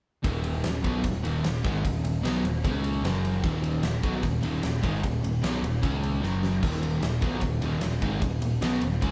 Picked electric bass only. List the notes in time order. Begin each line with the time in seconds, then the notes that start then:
0.24 D#1
0.64 D#1
0.84 B1
1.04 D#1
1.24 D#1
1.45 D#1
1.65 G#1
1.85 D#1
2.04 D#1
2.25 B1
2.44 D#1
2.64 C#2
3.03 F#1
3.44 D#1
3.83 D#1
4.03 B1
4.23 D#1
4.42 D#1
4.63 D#1
4.84 G#1
5.03 D#1
5.22 D#1
5.43 B1
5.63 D#1
5.83 C#2
6.23 F#1
6.63 D#1
7.02 D#1
7.22 B1
7.42 D#1
7.62 D#1
7.81 D#1
8.02 G#1
8.22 D#1
8.41 D#1
8.61 B1
8.82 D#1
9.02 C#2